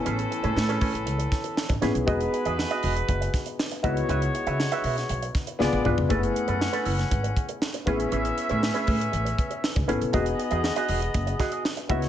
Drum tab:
HH |xxxx-xoxxxxx-xxx|xxxx-xoxxxxx-xxx|xxxx-xoxxxxx----|xxxx-xoxxxxx-xxx|
SD |----o-----o-o-o-|----o-----o-o---|----o--o--o-o---|----o--o----o---|
T1 |----------------|----------------|-------------o--|----------------|
T2 |----------------|----------------|--------------o-|----------------|
FT |----------------|----------------|---------------o|----------------|
BD |------o---o--o--|o-------o-o---o-|----------o-----|o-------o-o---o-|

HH |xxxx-xoxxxxx-xxx|xxxx-xoxxxxx-xxx|
SD |----o-------o---|----o-----o-o--o|
T1 |----------------|----------------|
T2 |----------------|----------------|
FT |----------------|----------------|
BD |------o---o--o--|o-------o-o---o-|